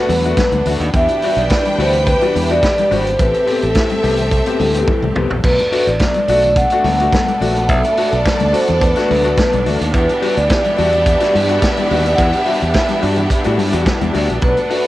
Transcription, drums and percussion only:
0.09 open hi-hat, high conga
0.24 closed hi-hat
0.37 kick, snare, closed hi-hat, muted conga, high conga
0.52 closed hi-hat, high conga
0.66 open hi-hat, low conga
0.81 closed hi-hat
0.94 kick, closed hi-hat, muted conga
1.08 closed hi-hat
1.22 open hi-hat
1.38 closed hi-hat
1.50 kick, snare, closed hi-hat
1.65 closed hi-hat, high conga
1.79 open hi-hat
1.93 closed hi-hat, low conga
2.07 kick, closed hi-hat
2.21 closed hi-hat, muted conga
2.34 open hi-hat, high conga
2.49 closed hi-hat
2.63 kick, snare, closed hi-hat, high conga
2.78 closed hi-hat, high conga
2.92 open hi-hat, low conga
3.07 closed hi-hat
3.19 kick, closed hi-hat, muted conga
3.34 closed hi-hat
3.47 open hi-hat
3.62 closed hi-hat
3.75 kick, snare, closed hi-hat, muted conga
3.90 closed hi-hat, high conga
4.04 open hi-hat
4.17 closed hi-hat, low conga
4.31 kick, closed hi-hat, muted conga
4.46 closed hi-hat, muted conga
4.60 open hi-hat, high conga
4.74 closed hi-hat
4.88 kick, high tom, high conga
5.04 muted conga, high conga, low conga
5.16 mid tom, low conga
5.30 floor tom
5.44 kick, crash, muted conga
5.59 closed hi-hat, muted conga
5.72 open hi-hat
5.87 closed hi-hat
5.99 kick, snare, closed hi-hat, muted conga
6.14 closed hi-hat, high conga
6.28 open hi-hat
6.42 closed hi-hat, low conga
6.56 kick, closed hi-hat, muted conga
6.70 closed hi-hat
6.84 open hi-hat, high conga
7.00 closed hi-hat
7.12 kick, snare, closed hi-hat, muted conga, high conga
7.28 closed hi-hat, high conga
7.41 open hi-hat, low conga
7.57 closed hi-hat
7.69 kick, closed hi-hat, muted conga
7.84 closed hi-hat, muted conga
7.97 open hi-hat
8.12 closed hi-hat
8.25 kick, snare, closed hi-hat
8.40 closed hi-hat, muted conga, high conga
8.54 open hi-hat
8.67 closed hi-hat, low conga
8.81 kick, closed hi-hat
8.95 snare, closed hi-hat
9.09 open hi-hat, high conga
9.25 closed hi-hat
9.37 kick, snare, closed hi-hat, muted conga, high conga
9.53 closed hi-hat, muted conga, high conga
9.65 open hi-hat, low conga
9.81 closed hi-hat
9.94 kick, closed hi-hat
10.09 closed hi-hat, muted conga
10.22 open hi-hat
10.37 closed hi-hat
10.50 kick, snare, closed hi-hat, muted conga
10.64 closed hi-hat, high conga
10.78 open hi-hat
10.92 closed hi-hat, low conga
11.06 kick, closed hi-hat, muted conga
11.20 snare, closed hi-hat, muted conga
11.34 open hi-hat, high conga
11.49 closed hi-hat
11.62 kick, snare, closed hi-hat, high conga
11.77 closed hi-hat, muted conga, high conga
11.91 open hi-hat, low conga
12.06 closed hi-hat
12.18 kick, closed hi-hat
12.33 closed hi-hat, muted conga
12.46 open hi-hat
12.61 closed hi-hat
12.74 kick, snare, closed hi-hat, muted conga
12.88 closed hi-hat, high conga
13.02 open hi-hat
13.16 closed hi-hat, low conga
13.30 kick, closed hi-hat
13.44 closed hi-hat, muted conga
13.58 open hi-hat, high conga
13.73 closed hi-hat
13.86 kick, snare, closed hi-hat, high conga
14.01 closed hi-hat, muted conga, high conga
14.14 open hi-hat, low conga
14.29 closed hi-hat
14.41 kick, closed hi-hat
14.57 closed hi-hat, muted conga
14.70 open hi-hat

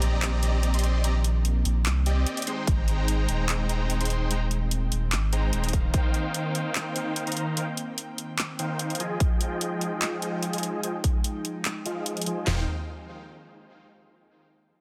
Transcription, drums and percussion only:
0.02 closed hi-hat
0.22 clap, closed hi-hat
0.43 closed hi-hat
0.63 closed hi-hat
0.74 closed hi-hat
0.79 closed hi-hat
0.84 closed hi-hat
1.04 closed hi-hat
1.24 closed hi-hat
1.45 closed hi-hat
1.65 closed hi-hat
1.86 clap, closed hi-hat
2.06 closed hi-hat
2.27 closed hi-hat
2.37 closed hi-hat
2.42 closed hi-hat
2.47 closed hi-hat
2.67 kick, closed hi-hat
2.88 closed hi-hat
3.08 closed hi-hat
3.29 closed hi-hat
3.49 clap, closed hi-hat
3.69 closed hi-hat
3.90 closed hi-hat
4.01 closed hi-hat
4.05 closed hi-hat
4.10 closed hi-hat
4.31 closed hi-hat
4.51 closed hi-hat
4.71 closed hi-hat
4.92 closed hi-hat
5.12 clap, closed hi-hat
5.33 closed hi-hat
5.53 closed hi-hat
5.64 closed hi-hat
5.68 closed hi-hat
5.73 kick, closed hi-hat
5.94 kick, closed hi-hat
6.14 closed hi-hat
6.34 closed hi-hat
6.55 closed hi-hat
6.75 clap, closed hi-hat
6.96 closed hi-hat
7.16 closed hi-hat
7.27 closed hi-hat
7.32 closed hi-hat
7.37 closed hi-hat
7.57 closed hi-hat
7.77 closed hi-hat
7.98 closed hi-hat
8.18 closed hi-hat
8.39 clap, closed hi-hat
8.59 closed hi-hat
8.79 closed hi-hat
8.90 closed hi-hat
8.95 closed hi-hat
9.00 closed hi-hat
9.20 kick, closed hi-hat
9.41 closed hi-hat
9.61 closed hi-hat
9.81 closed hi-hat
10.02 clap, closed hi-hat
10.22 closed hi-hat
10.43 closed hi-hat
10.53 closed hi-hat
10.58 closed hi-hat
10.63 closed hi-hat
10.83 closed hi-hat
11.04 kick, closed hi-hat
11.24 closed hi-hat
11.45 closed hi-hat
11.65 clap, closed hi-hat
11.86 closed hi-hat
12.06 closed hi-hat
12.17 closed hi-hat
12.22 closed hi-hat
12.26 closed hi-hat
12.47 snare, clap, floor tom

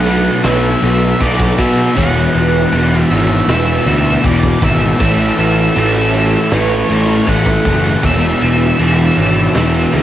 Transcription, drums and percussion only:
0.06 crash
0.44 snare, crash
0.82 crash
1.20 kick, crash
1.40 kick, snare
1.58 kick, crash
1.96 kick, crash
2.34 crash
2.72 crash
3.11 crash
3.49 snare, crash
3.86 crash
4.24 kick, crash
4.43 kick
4.62 kick, crash
5.00 kick, crash
5.38 crash
5.76 crash
6.14 crash
6.51 snare, crash
6.90 crash
7.27 kick, crash
7.46 kick, snare
7.65 kick, crash
8.03 kick, crash
8.41 crash
8.79 crash
9.17 crash
9.54 snare, crash
9.92 crash

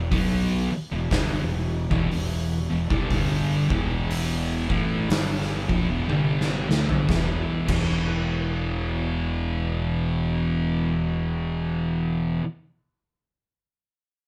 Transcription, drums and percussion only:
0.12 kick, open hi-hat
1.11 kick, snare, open hi-hat
1.91 kick
2.11 open hi-hat
2.90 kick
3.11 kick, open hi-hat
3.70 kick
4.11 open hi-hat
4.70 kick
5.10 snare, open hi-hat
5.41 snare
5.69 kick
6.10 high tom
6.41 snare
6.71 snare
6.89 floor tom
7.09 kick, snare
7.68 kick, crash

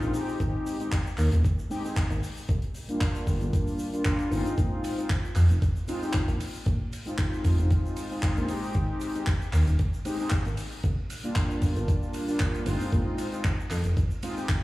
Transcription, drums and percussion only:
0.02 closed hi-hat, shaker
0.14 open hi-hat, shaker
0.29 shaker
0.40 kick, closed hi-hat, shaker
0.66 open hi-hat, shaker
0.80 closed hi-hat, shaker
0.92 kick, clap, closed hi-hat, shaker
1.07 shaker
1.17 clap, open hi-hat, shaker
1.32 closed hi-hat, shaker
1.45 kick, closed hi-hat, shaker
1.59 shaker
1.71 open hi-hat, shaker
1.85 shaker
1.96 kick, clap, closed hi-hat, shaker
2.10 closed hi-hat, shaker
2.23 open hi-hat, shaker
2.37 shaker
2.49 kick, closed hi-hat, shaker
2.62 closed hi-hat
2.75 open hi-hat, shaker
2.89 closed hi-hat, shaker
3.01 kick, clap, closed hi-hat, shaker
3.15 closed hi-hat, shaker
3.27 kick, open hi-hat, shaker
3.41 closed hi-hat, shaker
3.53 kick, closed hi-hat, shaker
3.67 open hi-hat, shaker
3.79 open hi-hat, shaker
3.94 closed hi-hat, shaker
4.05 kick, clap, closed hi-hat, shaker
4.19 closed hi-hat, shaker
4.32 open hi-hat, shaker
4.46 closed hi-hat, shaker
4.58 kick, closed hi-hat, shaker
4.84 open hi-hat, ride, shaker
4.99 closed hi-hat, shaker
5.10 kick, clap, closed hi-hat, shaker
5.25 shaker
5.35 clap, open hi-hat, ride, shaker
5.49 closed hi-hat, shaker
5.62 kick, closed hi-hat, shaker
5.76 shaker
5.88 open hi-hat, ride, shaker
6.03 shaker
6.13 kick, clap, closed hi-hat, shaker
6.28 closed hi-hat, shaker
6.40 open hi-hat, ride, shaker
6.54 shaker
6.66 kick, closed hi-hat, shaker
6.93 open hi-hat, ride, shaker
7.07 closed hi-hat, shaker
7.18 kick, clap, closed hi-hat, shaker
7.33 shaker
7.44 kick, open hi-hat, ride, shaker
7.58 closed hi-hat, shaker
7.70 kick, closed hi-hat, shaker
7.86 shaker
7.96 open hi-hat, ride, shaker
8.12 shaker
8.23 kick, clap, closed hi-hat, shaker
8.37 closed hi-hat, shaker
8.48 open hi-hat, ride, shaker
8.63 shaker
8.74 kick, closed hi-hat, shaker
9.01 open hi-hat, ride, shaker
9.15 closed hi-hat, shaker
9.27 kick, clap, closed hi-hat, shaker
9.42 shaker
9.53 clap, open hi-hat, ride, shaker
9.68 closed hi-hat, shaker
9.79 kick, closed hi-hat, shaker
9.93 shaker
10.05 open hi-hat, ride, shaker
10.19 shaker
10.30 kick, clap, closed hi-hat, shaker
10.45 closed hi-hat, shaker
10.57 open hi-hat, ride, shaker
10.72 shaker
10.83 kick, closed hi-hat, shaker
11.10 open hi-hat, ride, shaker
11.24 closed hi-hat, shaker
11.36 kick, clap, closed hi-hat, shaker
11.50 shaker
11.62 kick, open hi-hat, ride, shaker
11.76 closed hi-hat, shaker
11.88 kick, closed hi-hat, shaker
12.03 shaker
12.13 open hi-hat, ride, shaker
12.28 shaker
12.40 kick, clap, shaker
12.55 closed hi-hat, shaker
12.66 open hi-hat, ride, shaker
12.80 shaker
12.93 kick, closed hi-hat, shaker
13.18 open hi-hat, ride, shaker
13.32 closed hi-hat, shaker
13.44 kick, clap, closed hi-hat, shaker
13.60 shaker
13.70 clap, open hi-hat, ride, shaker
13.84 closed hi-hat, shaker
13.97 kick, closed hi-hat, shaker
14.11 shaker
14.23 open hi-hat, ride, shaker
14.37 shaker
14.49 kick, clap, closed hi-hat, shaker

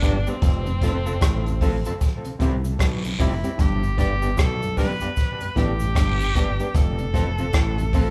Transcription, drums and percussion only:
0.02 kick, closed hi-hat, cabasa
0.27 closed hi-hat, cabasa
0.42 kick, closed hi-hat, cabasa
0.66 closed hi-hat, cabasa
0.81 kick, closed hi-hat, cabasa
1.06 closed hi-hat, cabasa
1.21 kick, cross-stick, closed hi-hat, cabasa
1.46 closed hi-hat, cabasa
1.61 kick, open hi-hat, cabasa
1.85 closed hi-hat, cabasa
2.01 kick, closed hi-hat, cabasa
2.24 closed hi-hat, cabasa
2.40 kick, closed hi-hat, cabasa
2.65 closed hi-hat, cabasa
2.79 kick, cross-stick, closed hi-hat, cabasa, long guiro
3.04 closed hi-hat, cabasa
3.19 kick, open hi-hat, cabasa
3.44 closed hi-hat, cabasa
3.59 kick, closed hi-hat, cabasa
3.83 closed hi-hat, cabasa
3.98 kick, closed hi-hat, cabasa
4.22 closed hi-hat, cabasa
4.37 kick, cross-stick, closed hi-hat, cabasa
4.62 closed hi-hat, cabasa
4.77 kick, open hi-hat, cabasa
5.01 closed hi-hat, cabasa
5.16 kick, closed hi-hat, cabasa
5.41 closed hi-hat, cabasa
5.56 kick, closed hi-hat, cabasa
5.80 closed hi-hat, cabasa
5.95 kick, cross-stick, closed hi-hat, cabasa, long guiro
6.20 closed hi-hat, cabasa
6.35 kick, closed hi-hat, cabasa
6.59 closed hi-hat, cabasa
6.74 kick, closed hi-hat, cabasa
6.98 closed hi-hat, cabasa
7.14 kick, closed hi-hat, cabasa
7.38 closed hi-hat, cabasa
7.53 kick, cross-stick, closed hi-hat, cabasa
7.78 closed hi-hat, cabasa
7.93 kick, open hi-hat, cabasa

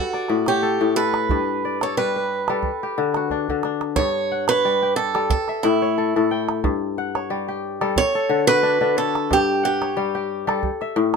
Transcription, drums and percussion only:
0.13 calabash click
0.28 calabash click
0.46 calabash click
1.14 calabash click
1.29 calabash thump
1.81 calabash click
2.48 calabash click
2.63 calabash thump
3.14 calabash click
3.30 calabash thump
3.49 calabash thump
3.63 calabash click
3.81 calabash click
3.96 calabash thump, calabash click
4.48 calabash click
5.15 calabash click
5.30 calabash thump
5.48 calabash click
5.63 calabash click
6.49 calabash click
6.64 calabash thump, calabash click
7.15 calabash click
7.81 calabash click
7.96 calabash thump
8.15 calabash click
8.30 calabash click
8.48 calabash click
9.15 calabash click
9.31 calabash thump, calabash click
9.82 calabash click
10.49 calabash click
10.63 calabash thump
10.81 calabash click
10.96 calabash click

